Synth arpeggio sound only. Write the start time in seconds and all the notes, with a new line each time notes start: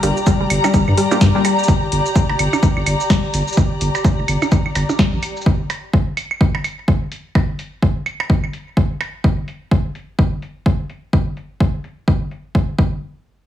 0.03 G3
0.27 G3
0.41 G3
0.64 G3
0.74 G3
0.97 G3
1.11 G3
1.35 G3
1.45 G3